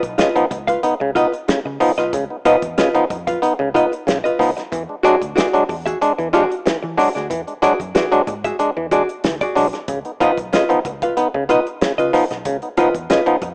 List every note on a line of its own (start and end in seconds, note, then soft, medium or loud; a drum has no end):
0.03 0.15 B1 medium
0.03 kick medium
0.03 closed hi-hat soft
0.18 0.29 C#3 medium
0.18 0.34 F4 medium
0.18 0.35 B4 medium
0.18 0.35 D#5 medium
0.18 snare loud
0.18 closed hi-hat loud
0.36 0.45 F3 medium
0.36 0.45 B3 medium
0.36 0.46 D#4 medium
0.36 closed hi-hat soft
0.51 0.76 C#2 medium
0.51 0.58 B3 soft
0.51 0.58 D#4 soft
0.51 muted hollow-body jazz guitar stroke soft
0.51 kick medium
0.51 closed hi-hat medium
0.67 0.80 F4 medium
0.67 0.79 B4 medium
0.67 0.79 F5 medium
0.67 kick loud
0.67 closed hi-hat medium
0.83 0.94 B3 medium
0.83 0.95 D#4 medium
0.83 muted picked electric bass stroke medium
0.83 closed hi-hat medium
1.00 1.25 C#2 medium
1.00 1.11 C#3 medium
1.00 muted hollow-body jazz guitar stroke medium
1.15 1.27 B3 medium
1.15 1.27 D#4 medium
1.15 1.31 F4 medium
1.15 1.32 B4 medium
1.15 1.31 D#5 loud
1.15 kick loud
1.15 closed hi-hat medium
1.32 muted hollow-body jazz guitar stroke medium
1.32 closed hi-hat soft
1.48 1.59 C#3 medium
1.48 muted hollow-body jazz guitar stroke soft
1.48 snare loud
1.48 closed hi-hat medium
1.65 1.77 C#3 loud
1.65 muted hollow-body jazz guitar stroke soft
1.80 1.91 F3 medium
1.80 1.91 B3 medium
1.80 1.92 D#4 medium
1.80 open hi-hat medium
1.98 2.10 B1 loud
1.98 2.04 B3 soft
1.98 2.04 D#4 soft
1.98 2.13 F4 medium
1.98 2.12 B4 medium
1.98 2.12 D#5 medium
1.98 snare soft
1.98 closed hi-hat medium
2.13 2.26 C#2 loud
2.13 2.24 C#3 medium
2.13 kick loud
2.13 closed hi-hat medium
2.30 2.36 B3 soft
2.30 2.36 D#4 soft
2.45 2.56 F3 medium
2.45 2.56 B3 medium
2.45 2.57 D#4 medium
2.45 2.61 F4 medium
2.45 2.62 B4 medium
2.45 2.62 D#5 loud
2.45 kick medium
2.45 closed hi-hat medium
2.62 2.74 E2 medium
2.62 kick loud
2.62 closed hi-hat medium
2.78 2.89 C#3 medium
2.78 2.94 F4 medium
2.78 2.94 B4 medium
2.78 2.94 D#5 medium
2.78 snare loud
2.78 closed hi-hat loud
2.94 3.04 F3 medium
2.94 3.05 B3 medium
2.94 3.05 D#4 medium
2.94 closed hi-hat soft
3.10 3.35 F2 loud
3.10 3.17 B3 soft
3.10 3.17 D#4 soft
3.10 muted hollow-body jazz guitar stroke soft
3.10 kick loud
3.10 closed hi-hat medium
3.27 3.39 F4 medium
3.27 3.39 B4 medium
3.27 3.38 F5 medium
3.27 kick loud
3.27 closed hi-hat medium
3.42 3.53 B3 medium
3.42 3.54 D#4 medium
3.42 muted picked electric bass stroke soft
3.42 closed hi-hat medium
3.59 3.84 C#2 medium
3.59 3.69 C#3 medium
3.59 muted hollow-body jazz guitar stroke soft
3.74 3.86 B3 medium
3.74 3.86 D#4 medium
3.74 3.91 F4 medium
3.74 3.91 B4 loud
3.74 3.91 D#5 medium
3.74 kick medium
3.74 closed hi-hat medium
3.92 muted hollow-body jazz guitar stroke medium
3.92 closed hi-hat soft
4.07 4.20 B1 loud
4.07 4.18 C#3 medium
4.07 muted hollow-body jazz guitar stroke soft
4.07 snare loud
4.07 closed hi-hat medium
4.24 4.38 F4 medium
4.24 4.39 B4 medium
4.24 4.38 D#5 medium
4.24 closed hi-hat soft
4.39 4.52 C#2 medium
4.39 4.50 F3 medium
4.39 4.50 B3 medium
4.39 4.51 D#4 medium
4.39 muted hollow-body jazz guitar stroke soft
4.39 snare soft
4.39 open hi-hat medium
4.57 4.63 B3 soft
4.57 4.63 D#4 soft
4.57 muted hollow-body jazz guitar stroke soft
4.57 snare soft
4.57 closed hi-hat medium
4.72 4.85 E2 loud
4.72 4.83 E3 medium
4.72 kick loud
4.72 closed hi-hat medium
4.89 4.95 G#3 soft
4.89 4.95 D4 soft
5.03 5.15 F#3 medium
5.03 5.15 G#3 medium
5.03 5.16 D4 medium
5.03 5.20 F#4 loud
5.03 5.20 G#4 loud
5.03 5.20 D5 loud
5.03 kick medium
5.03 closed hi-hat medium
5.21 5.33 D2 medium
5.21 kick medium
5.21 closed hi-hat medium
5.36 5.48 E3 medium
5.36 5.52 F#4 medium
5.36 5.52 G#4 medium
5.36 5.53 D5 loud
5.36 snare loud
5.36 closed hi-hat loud
5.53 5.63 F#3 medium
5.53 5.64 G#3 medium
5.53 5.64 D4 medium
5.53 closed hi-hat soft
5.69 5.94 E2 loud
5.69 5.76 G#3 soft
5.69 5.76 D4 soft
5.69 muted hollow-body jazz guitar stroke soft
5.69 kick medium
5.69 open hi-hat medium
5.86 5.97 F#4 medium
5.86 5.97 G#4 medium
5.86 5.97 E5 medium
5.86 kick loud
5.86 closed hi-hat medium
6.01 6.12 G#3 medium
6.01 6.12 D4 medium
6.01 muted picked electric bass stroke soft
6.01 closed hi-hat medium
6.18 6.43 E2 medium
6.18 6.28 E3 medium
6.18 muted hollow-body jazz guitar stroke soft
6.18 closed hi-hat soft
6.33 6.44 G#3 medium
6.33 6.45 D4 medium
6.33 6.54 F#4 loud
6.33 6.50 G#4 medium
6.33 6.49 D5 loud
6.33 kick medium
6.33 closed hi-hat medium
6.50 muted hollow-body jazz guitar stroke medium
6.50 closed hi-hat soft
6.66 6.77 E3 medium
6.66 muted hollow-body jazz guitar stroke soft
6.66 snare loud
6.66 closed hi-hat medium
6.83 6.95 E3 loud
6.83 muted hollow-body jazz guitar stroke soft
6.97 7.09 F#3 medium
6.97 7.09 G#3 medium
6.97 7.09 D4 medium
6.97 7.10 F#4 medium
6.97 7.11 G#4 medium
6.97 7.11 D5 medium
6.97 snare soft
6.97 open hi-hat medium
7.15 7.27 D2 loud
7.15 7.21 G#3 soft
7.15 7.21 D4 soft
7.15 7.27 F#4 soft
7.15 7.27 G#4 medium
7.15 7.26 D5 medium
7.15 snare soft
7.15 closed hi-hat medium
7.30 7.43 E2 loud
7.30 7.41 E3 medium
7.30 kick loud
7.30 closed hi-hat medium
7.47 7.54 G#3 soft
7.47 7.54 D4 soft
7.47 closed hi-hat soft
7.62 7.73 F#3 medium
7.62 7.73 G#3 medium
7.62 7.74 D4 medium
7.62 7.78 F#4 medium
7.62 7.79 G#4 loud
7.62 7.79 D5 loud
7.62 kick medium
7.62 closed hi-hat medium
7.80 7.91 F#2 medium
7.80 kick medium
7.80 closed hi-hat medium
7.95 8.06 E3 medium
7.95 8.11 F#4 medium
7.95 8.11 G#4 medium
7.95 8.12 D5 medium
7.95 snare loud
7.95 closed hi-hat medium
8.12 8.21 F#3 medium
8.12 8.22 G#3 medium
8.12 8.22 D4 medium
8.12 closed hi-hat soft
8.27 8.52 G#2 medium
8.27 8.34 G#3 soft
8.27 8.34 D4 soft
8.27 muted hollow-body jazz guitar stroke soft
8.27 kick medium
8.27 closed hi-hat medium
8.44 8.56 F#4 medium
8.44 8.56 G#4 medium
8.44 8.55 E5 medium
8.44 kick loud
8.44 closed hi-hat medium
8.59 8.70 G#3 medium
8.59 8.70 D4 medium
8.59 muted picked electric bass stroke soft
8.59 closed hi-hat medium
8.77 9.01 E2 medium
8.77 8.86 E3 medium
8.77 muted hollow-body jazz guitar stroke soft
8.91 9.03 G#3 medium
8.91 9.03 D4 medium
8.91 9.07 F#4 medium
8.91 9.08 G#4 medium
8.91 9.08 D5 medium
8.91 kick loud
8.91 closed hi-hat medium
9.09 muted hollow-body jazz guitar stroke soft
9.09 closed hi-hat soft
9.24 9.37 D2 loud
9.24 9.35 E3 medium
9.24 muted hollow-body jazz guitar stroke soft
9.24 snare loud
9.24 closed hi-hat loud
9.41 9.56 F#4 medium
9.41 9.56 G#4 medium
9.41 9.55 D5 medium
9.41 kick loud
9.41 closed hi-hat soft
9.55 9.70 B1 medium
9.55 9.67 F#3 medium
9.55 9.67 G#3 medium
9.55 9.67 D4 medium
9.55 muted hollow-body jazz guitar stroke soft
9.55 snare soft
9.55 open hi-hat medium
9.73 9.79 G#3 soft
9.73 9.79 D4 soft
9.73 muted hollow-body jazz guitar stroke soft
9.73 snare soft
9.73 closed hi-hat medium
9.88 10.01 C#2 loud
9.88 9.99 C#3 medium
9.88 kick loud
9.88 closed hi-hat medium
10.05 10.11 B3 soft
10.05 10.11 D#4 soft
10.05 closed hi-hat soft
10.20 10.31 F3 medium
10.20 10.31 B3 medium
10.20 10.32 D#4 medium
10.20 10.37 F4 medium
10.20 10.37 B4 loud
10.20 10.37 D#5 loud
10.20 kick medium
10.20 closed hi-hat medium
10.38 10.49 B1 medium
10.38 kick medium
10.38 closed hi-hat medium
10.53 10.64 C#3 medium
10.53 10.69 F4 medium
10.53 10.69 B4 medium
10.53 10.70 D#5 medium
10.53 snare loud
10.53 closed hi-hat loud
10.69 10.79 F3 medium
10.69 10.79 B3 medium
10.69 10.79 D#4 medium
10.69 closed hi-hat soft
10.85 11.09 C#2 medium
10.85 10.92 B3 soft
10.85 10.92 D#4 soft
10.85 muted hollow-body jazz guitar stroke soft
10.85 kick medium
10.85 closed hi-hat medium
11.02 11.14 F4 soft
11.02 11.14 B4 medium
11.02 11.13 F5 medium
11.02 kick loud
11.02 closed hi-hat medium
11.17 11.28 B3 medium
11.17 11.28 D#4 medium
11.17 muted picked electric bass stroke soft
11.17 muted hollow-body jazz guitar stroke soft
11.17 closed hi-hat medium
11.34 11.59 C#2 loud
11.34 11.44 C#3 medium
11.34 muted hollow-body jazz guitar stroke soft
11.49 11.60 B3 medium
11.49 11.60 D#4 medium
11.49 11.65 F4 medium
11.49 11.66 B4 medium
11.49 11.66 D#5 loud
11.49 kick medium
11.49 closed hi-hat medium
11.67 muted hollow-body jazz guitar stroke medium
11.67 closed hi-hat soft
11.81 11.92 C#3 medium
11.81 muted hollow-body jazz guitar stroke soft
11.81 snare loud
11.81 closed hi-hat medium
11.98 12.10 C#3 medium
11.98 12.12 F4 medium
11.98 12.13 B4 medium
11.98 12.12 D#5 medium
11.98 closed hi-hat soft
12.13 12.24 F3 medium
12.13 12.24 B3 medium
12.13 12.25 D#4 medium
12.13 muted hollow-body jazz guitar stroke medium
12.13 snare soft
12.13 open hi-hat medium
12.30 12.42 B1 medium
12.30 12.37 B3 soft
12.30 12.37 D#4 soft
12.30 muted hollow-body jazz guitar stroke soft
12.30 snare soft
12.30 closed hi-hat medium
12.45 12.59 C#2 loud
12.45 12.57 C#3 medium
12.45 kick loud
12.45 closed hi-hat loud
12.62 12.69 B3 soft
12.62 12.69 D#4 soft
12.62 closed hi-hat soft
12.77 12.89 F3 medium
12.77 12.89 B3 medium
12.77 12.89 D#4 medium
12.77 12.93 F4 loud
12.77 12.94 B4 loud
12.77 12.94 D#5 loud
12.77 kick medium
12.77 closed hi-hat medium
12.95 13.06 E2 medium
12.95 kick medium
12.95 closed hi-hat medium
13.10 13.21 C#3 medium
13.10 13.26 F4 medium
13.10 13.26 B4 medium
13.10 13.26 D#5 medium
13.10 snare loud
13.10 closed hi-hat loud
13.26 13.36 F3 medium
13.26 13.36 B3 medium
13.26 13.37 D#4 medium
13.26 closed hi-hat soft
13.42 13.54 F2 medium
13.42 13.49 B3 soft
13.42 13.49 D#4 soft
13.42 muted hollow-body jazz guitar stroke soft
13.42 kick medium
13.42 closed hi-hat medium